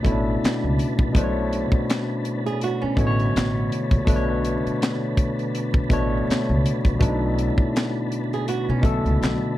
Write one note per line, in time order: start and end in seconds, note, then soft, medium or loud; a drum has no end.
0.00 0.03 B2 medium
0.00 0.99 B2 medium
0.00 9.58 D3 medium
0.00 0.04 A3 medium
0.00 1.00 A3 medium
0.00 9.58 B3 medium
0.00 0.12 D4 medium
0.00 9.58 A4 medium
0.00 9.58 B4 medium
0.00 1.24 C#5 medium
0.05 0.36 A1 medium
0.05 0.13 C#4 medium
0.05 1.02 E4 loud
0.05 kick medium
0.05 closed hi-hat medium
0.12 1.04 D4 medium
0.44 muted upright bass stroke soft
0.44 snare loud
0.44 clap medium
0.44 closed hi-hat medium
0.64 0.77 C#2 medium
0.79 closed hi-hat medium
0.99 1.13 A#1 medium
0.99 kick loud
1.13 1.63 B1 loud
1.13 2.40 B2 medium
1.13 2.41 A3 medium
1.13 2.42 D4 medium
1.13 kick loud
1.13 closed hi-hat medium
1.18 1.24 C5 medium
1.24 2.46 C#5 medium
1.53 closed hi-hat medium
1.72 muted upright bass stroke soft
1.72 kick medium
1.90 snare loud
1.90 clap medium
1.90 closed hi-hat medium
2.25 closed hi-hat medium
2.46 2.61 G#4 medium
2.46 closed hi-hat soft
2.61 2.82 F#4 medium
2.61 closed hi-hat medium
2.82 3.87 C#4 medium
2.82 muted upright bass stroke soft
2.96 3.28 A1 medium
2.96 3.93 B2 medium
2.96 3.94 D3 medium
2.96 3.93 A3 medium
2.96 kick medium
2.96 closed hi-hat medium
3.00 3.06 C#5 medium
3.07 3.98 C#5 loud
3.20 closed hi-hat soft
3.36 3.66 A1 medium
3.36 snare loud
3.36 clap medium
3.36 closed hi-hat medium
3.72 closed hi-hat medium
3.91 4.06 A#1 medium
3.91 kick loud
3.91 closed hi-hat soft
4.05 4.55 B1 medium
4.05 5.33 B2 medium
4.05 5.34 A3 medium
4.05 5.34 D4 medium
4.05 kick loud
4.05 closed hi-hat medium
4.10 4.16 B4 medium
4.16 5.38 C#5 medium
4.45 closed hi-hat medium
4.66 muted upright bass stroke soft
4.66 closed hi-hat soft
4.82 snare loud
4.82 clap medium
4.82 closed hi-hat medium
5.17 kick loud
5.17 closed hi-hat medium
5.39 closed hi-hat soft
5.55 closed hi-hat medium
5.74 muted upright bass stroke soft
5.74 kick loud
5.89 6.21 A1 medium
5.89 6.85 B2 medium
5.89 6.86 A3 medium
5.89 6.87 D4 medium
5.89 kick medium
5.89 closed hi-hat medium
5.93 6.87 C#5 loud
6.29 muted upright bass stroke soft
6.29 snare medium
6.29 clap medium
6.29 closed hi-hat medium
6.49 6.62 C#2 medium
6.66 closed hi-hat medium
6.85 6.99 A#1 medium
6.85 kick loud
6.85 closed hi-hat soft
6.99 7.48 B1 loud
6.99 8.26 B2 medium
6.99 8.27 A3 medium
6.99 8.28 D4 medium
6.99 kick loud
6.99 closed hi-hat loud
7.03 7.09 D#4 medium
7.10 8.32 E4 medium
7.39 closed hi-hat medium
7.58 muted upright bass stroke soft
7.58 kick loud
7.76 snare loud
7.76 clap medium
7.76 closed hi-hat medium
8.12 closed hi-hat medium
8.33 8.48 G#4 medium
8.33 closed hi-hat soft
8.48 8.67 F#4 medium
8.48 closed hi-hat medium
8.69 8.82 B2 medium
8.69 9.58 C#4 medium
8.81 9.01 B1 medium
8.81 9.58 B2 medium
8.81 9.58 D3 medium
8.81 9.58 A3 medium
8.81 kick medium
8.81 closed hi-hat medium
8.86 9.58 A4 loud
9.05 9.18 C#2 medium
9.05 closed hi-hat soft
9.22 9.38 B1 medium
9.22 snare medium
9.22 clap medium
9.22 closed hi-hat medium